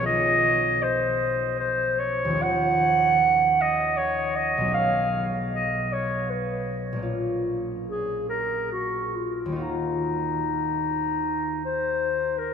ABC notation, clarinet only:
X:1
M:3/4
L:1/16
Q:1/4=76
K:Ebm
V:1 name="Clarinet"
e4 =c4 c2 d2 | g6 e2 d2 e2 | f3 z ^d2 ^c2 =B2 z2 | z4 A2 B2 G2 F2 |
E8 =c3 B |]